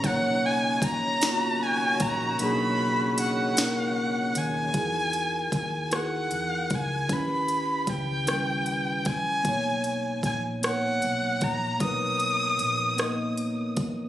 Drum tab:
HH |x-xx-x|x-xx-x|xxxxxx|xxxxxx|
SD |---o--|---o--|---r--|---r--|
BD |o-o--o|------|o-o--o|o-o--o|

HH |xxxxxx|xxxxxx|
SD |---r--|---r--|
BD |o-o--o|o----o|